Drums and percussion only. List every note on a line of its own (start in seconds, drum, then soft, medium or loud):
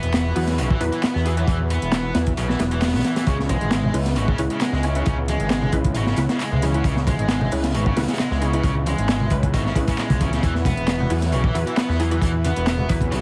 0.03 closed hi-hat soft
0.14 snare loud
0.14 clap loud
0.14 closed hi-hat soft
0.14 closed hi-hat medium
0.36 closed hi-hat medium
0.36 open hi-hat medium
0.48 snare medium
0.48 closed hi-hat soft
0.58 closed hi-hat soft
0.58 closed hi-hat medium
0.71 kick loud
0.81 closed hi-hat medium
0.92 closed hi-hat soft
1.03 snare loud
1.03 clap loud
1.03 closed hi-hat soft
1.03 closed hi-hat medium
1.15 snare medium
1.26 closed hi-hat medium
1.37 closed hi-hat soft
1.47 kick loud
1.47 closed hi-hat soft
1.47 closed hi-hat medium
1.70 closed hi-hat medium
1.82 closed hi-hat soft
1.92 snare loud
1.92 clap loud
1.92 closed hi-hat loud
1.92 closed hi-hat soft
2.15 snare loud
2.15 closed hi-hat medium
2.27 kick medium
2.27 closed hi-hat soft
2.37 closed hi-hat soft
2.37 closed hi-hat medium
2.49 snare medium
2.59 snare loud
2.59 closed hi-hat medium
2.71 closed hi-hat soft
2.82 snare medium
2.82 clap loud
2.82 closed hi-hat soft
2.82 closed hi-hat medium
2.87 snare medium
2.87 closed hi-hat medium
2.93 snare medium
2.93 closed hi-hat medium
2.99 snare loud
2.99 closed hi-hat medium
3.04 snare loud
3.04 closed hi-hat medium
3.16 snare loud
3.16 closed hi-hat soft
3.16 closed hi-hat medium
3.26 kick loud
3.26 closed hi-hat medium
3.26 closed hi-hat soft
3.40 snare soft
3.49 kick loud
3.49 closed hi-hat medium
3.49 high conga medium
3.49 low conga medium
3.61 closed hi-hat soft
3.71 snare loud
3.71 clap loud
3.71 closed hi-hat soft
3.71 closed hi-hat medium
3.83 low conga medium
3.94 closed hi-hat medium
3.94 open hi-hat medium
4.06 snare soft
4.06 closed hi-hat soft
4.16 closed hi-hat medium
4.16 closed hi-hat soft
4.28 kick loud
4.38 closed hi-hat medium
4.50 closed hi-hat soft
4.61 snare loud
4.61 clap loud
4.61 closed hi-hat loud
4.61 closed hi-hat soft
4.73 snare medium
4.83 closed hi-hat medium
4.95 closed hi-hat soft
5.06 kick loud
5.06 closed hi-hat medium
5.06 closed hi-hat soft
5.28 closed hi-hat medium
5.28 high conga medium
5.40 closed hi-hat soft
5.50 snare loud
5.50 clap loud
5.50 closed hi-hat soft
5.50 closed hi-hat medium
5.62 low conga medium
5.72 kick medium
5.72 closed hi-hat medium
5.84 kick loud
5.84 closed hi-hat soft
5.84 high conga medium
5.95 closed hi-hat medium
5.95 closed hi-hat soft
6.06 snare medium
6.16 snare medium
6.16 closed hi-hat medium
6.29 snare loud
6.29 closed hi-hat soft
6.40 clap loud
6.40 closed hi-hat medium
6.40 closed hi-hat soft
6.52 low conga medium
6.62 closed hi-hat medium
6.62 high conga medium
6.74 closed hi-hat soft
6.84 kick loud
6.84 closed hi-hat medium
6.84 closed hi-hat soft
6.96 snare soft
7.07 kick loud
7.07 closed hi-hat medium
7.07 high conga medium
7.07 low conga medium
7.19 closed hi-hat soft
7.28 snare loud
7.28 clap loud
7.28 closed hi-hat medium
7.28 closed hi-hat soft
7.41 low conga medium
7.51 closed hi-hat medium
7.51 open hi-hat medium
7.64 snare soft
7.64 closed hi-hat soft
7.75 closed hi-hat soft
7.75 closed hi-hat loud
7.86 kick medium
7.97 snare medium
7.97 closed hi-hat medium
8.02 snare medium
8.02 closed hi-hat medium
8.08 snare medium
8.08 closed hi-hat medium
8.08 closed hi-hat soft
8.13 snare medium
8.13 closed hi-hat medium
8.19 snare loud
8.19 clap loud
8.19 closed hi-hat soft
8.19 closed hi-hat medium
8.31 snare medium
8.41 closed hi-hat medium
8.53 closed hi-hat soft
8.63 kick loud
8.63 closed hi-hat medium
8.63 closed hi-hat soft
8.86 closed hi-hat medium
8.86 high conga medium
8.98 closed hi-hat soft
9.09 snare loud
9.09 clap loud
9.09 closed hi-hat medium
9.09 closed hi-hat soft
9.20 low conga medium
9.30 kick loud
9.30 closed hi-hat medium
9.43 kick loud
9.43 closed hi-hat soft
9.43 high conga medium
9.54 kick medium
9.54 closed hi-hat medium
9.54 closed hi-hat soft
9.66 snare soft
9.76 kick medium
9.76 closed hi-hat medium
9.87 kick loud
9.87 closed hi-hat medium
9.87 closed hi-hat soft
9.98 snare soft
9.98 clap loud
9.98 closed hi-hat soft
10.10 kick medium
10.10 closed hi-hat medium
10.10 low conga medium
10.21 kick loud
10.21 closed hi-hat medium
10.21 high conga medium
10.33 snare soft
10.33 closed hi-hat soft
10.43 kick loud
10.43 closed hi-hat medium
10.43 closed hi-hat soft
10.55 snare soft
10.65 kick loud
10.65 closed hi-hat medium
10.65 high conga medium
10.65 low conga medium
10.77 closed hi-hat soft
10.87 snare loud
10.87 clap loud
10.87 closed hi-hat medium
10.87 closed hi-hat soft
11.00 low conga medium
11.10 closed hi-hat medium
11.10 open hi-hat medium
11.22 snare soft
11.22 closed hi-hat soft
11.32 closed hi-hat medium
11.32 closed hi-hat soft
11.44 kick loud
11.55 closed hi-hat medium
11.67 closed hi-hat soft
11.77 snare loud
11.77 clap loud
11.77 closed hi-hat soft
11.77 closed hi-hat medium
11.90 snare medium
12.00 closed hi-hat medium
12.11 closed hi-hat soft
12.21 kick loud
12.21 closed hi-hat soft
12.21 closed hi-hat medium
12.45 closed hi-hat medium
12.45 high conga medium
12.56 closed hi-hat soft
12.67 snare loud
12.67 clap loud
12.67 closed hi-hat loud
12.67 closed hi-hat soft
12.78 low conga medium
12.89 kick medium
12.89 closed hi-hat medium
13.01 kick loud
13.01 closed hi-hat soft
13.01 high conga medium
13.12 closed hi-hat medium
13.12 closed hi-hat soft